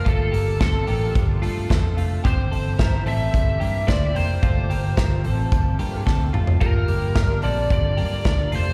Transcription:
0.05 0.29 G1 loud
0.05 6.58 C3 medium
0.05 2.23 F3 medium
0.05 0.32 A3 medium
0.05 2.23 D4 medium
0.05 0.33 F4 medium
0.05 2.23 F4 medium
0.05 2.23 A4 medium
0.05 0.58 A4 medium
0.05 kick loud
0.05 closed hi-hat medium
0.32 0.56 G1 loud
0.32 0.60 A#3 medium
0.32 0.59 G4 medium
0.32 open hi-hat medium
0.60 0.83 G1 medium
0.60 0.87 C4 medium
0.60 0.87 A4 medium
0.60 1.12 A4 medium
0.60 kick loud
0.60 snare loud
0.60 closed hi-hat medium
0.87 1.11 A1 medium
0.87 1.39 A#3 medium
0.87 1.39 G4 medium
0.87 open hi-hat medium
1.15 1.38 G1 loud
1.15 kick loud
1.15 closed hi-hat medium
1.42 1.65 G2 medium
1.42 1.70 A3 medium
1.42 1.69 F4 medium
1.42 open hi-hat medium
1.69 1.93 F2 medium
1.69 1.97 C4 medium
1.69 1.97 A4 medium
1.69 kick loud
1.69 snare loud
1.69 closed hi-hat medium
1.97 2.19 F1 medium
1.97 2.24 A3 medium
1.97 2.24 F4 medium
1.97 open hi-hat medium
2.24 2.47 G1 loud
2.24 4.41 E3 medium
2.24 4.41 G3 medium
2.24 2.51 C4 medium
2.24 4.41 E4 medium
2.24 2.51 G4 loud
2.24 8.73 G4 medium
2.24 3.10 C5 medium
2.24 kick loud
2.24 closed hi-hat medium
2.51 2.74 G1 loud
2.51 2.79 C4 medium
2.51 2.78 A4 medium
2.51 open hi-hat medium
2.79 3.01 G1 loud
2.79 3.06 E4 medium
2.79 3.06 A#4 medium
2.79 kick loud
2.79 snare loud
2.79 closed hi-hat medium
3.06 3.28 A1 loud
3.06 3.58 C4 medium
3.06 3.57 A4 medium
3.06 3.88 E5 loud
3.06 open hi-hat medium
3.34 3.56 G1 loud
3.34 kick loud
3.34 closed hi-hat medium
3.60 3.83 G2 medium
3.60 3.88 A#3 medium
3.60 3.87 G4 medium
3.60 open hi-hat medium
3.88 4.11 D2 medium
3.88 4.16 E4 medium
3.88 4.15 C5 medium
3.88 4.13 D5 loud
3.88 kick loud
3.88 snare loud
3.88 closed hi-hat medium
4.15 4.38 F1 medium
4.15 4.43 A#3 medium
4.15 4.42 G4 medium
4.15 6.03 C5 medium
4.15 open hi-hat medium
4.43 4.65 G1 loud
4.43 8.73 G3 medium
4.43 6.59 A3 medium
4.43 4.70 A3 medium
4.43 4.70 F4 loud
4.43 8.73 F4 medium
4.43 kick loud
4.43 closed hi-hat medium
4.70 4.92 G1 loud
4.70 4.98 A#3 medium
4.70 4.97 G4 medium
4.70 open hi-hat medium
4.97 5.20 G1 loud
4.97 5.25 F4 medium
4.97 5.24 A#4 medium
4.97 kick loud
4.97 snare loud
4.97 closed hi-hat medium
5.24 5.47 A1 medium
5.24 5.77 C4 medium
5.24 5.76 A4 medium
5.24 open hi-hat medium
5.52 5.75 G1 loud
5.52 kick loud
5.52 closed hi-hat medium
5.79 6.02 G2 loud
5.79 6.06 A#3 medium
5.79 6.05 G4 medium
5.79 open hi-hat medium
6.06 6.29 D2 medium
6.06 6.34 C4 medium
6.06 6.34 A4 medium
6.06 kick loud
6.06 snare medium
6.33 6.57 F1 medium
6.33 6.61 A3 medium
6.33 6.59 F4 medium
6.33 mid tom medium
6.47 floor tom loud
6.61 6.83 G1 loud
6.61 8.73 D3 medium
6.61 6.88 A#3 medium
6.61 8.73 A#3 medium
6.61 6.88 F4 loud
6.61 8.73 G4 loud
6.61 7.46 A#4 medium
6.61 kick loud
6.61 closed hi-hat medium
6.88 7.12 G1 loud
6.88 7.16 A#3 medium
6.88 7.15 G4 medium
6.88 open hi-hat medium
7.15 7.38 G1 loud
7.15 7.43 D4 medium
7.15 7.42 A#4 medium
7.15 kick loud
7.15 snare loud
7.15 closed hi-hat medium
7.42 7.66 A#1 medium
7.42 7.95 C4 medium
7.42 7.94 A4 medium
7.42 7.69 D5 medium
7.42 open hi-hat medium
7.70 7.99 G1 loud
7.70 8.56 D5 loud
7.70 kick loud
7.70 closed hi-hat medium
7.97 8.20 G2 loud
7.97 8.25 A#3 medium
7.97 8.25 G4 medium
7.97 open hi-hat medium
8.25 8.48 D2 medium
8.25 8.52 D4 medium
8.25 8.52 A#4 medium
8.25 kick loud
8.25 snare loud
8.25 closed hi-hat medium
8.52 8.73 F1 medium
8.52 8.73 A3 medium
8.52 8.73 F4 medium
8.52 8.73 C5 loud
8.52 open hi-hat medium

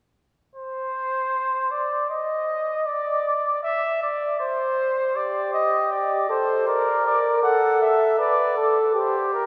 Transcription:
0.55 1.72 C5 medium
1.71 2.09 D5 medium
2.10 2.87 D#5 medium
2.86 3.62 D5 medium
3.63 4.01 E5 medium
4.02 4.39 D5 medium
4.40 5.17 C5 medium
5.16 6.26 G4 medium
5.16 5.53 D5 medium
5.53 5.91 D#5 medium
5.91 6.29 D5 medium
6.29 6.67 A4 medium
6.29 6.67 C5 medium
6.67 7.42 A#4 loud
6.67 7.05 D5 medium
7.06 7.42 D5 medium
7.43 8.21 A4 medium
7.43 7.80 F#5 medium
7.81 8.18 E5 medium
8.19 8.56 B4 medium
8.19 8.67 D5 medium
8.57 8.94 A4 medium
8.95 9.46 G4 medium
8.95 9.30 C5 medium
9.33 9.46 A#4 medium

